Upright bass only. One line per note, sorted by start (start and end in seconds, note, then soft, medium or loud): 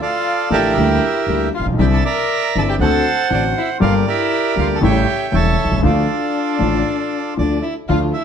0.51 0.72 A1 soft
0.76 0.97 D2 medium
1.27 1.48 D2 soft
1.59 1.65 A1 soft
1.66 1.72 A#1 soft
1.72 1.78 B1 medium
1.79 2.00 C2 medium
2.55 2.76 G1 soft
2.79 3.01 D2 medium
3.31 3.52 A1 soft
3.82 4.03 G1 medium
4.57 4.78 D2 soft
4.83 5.04 A1 medium
5.33 5.54 E1 soft
5.65 5.71 B1 soft
5.72 5.78 C2 soft
5.78 5.84 C#2 medium
5.84 6.05 D2 medium
6.61 6.82 A1 soft
7.38 7.60 D2 soft
7.89 8.11 D2 medium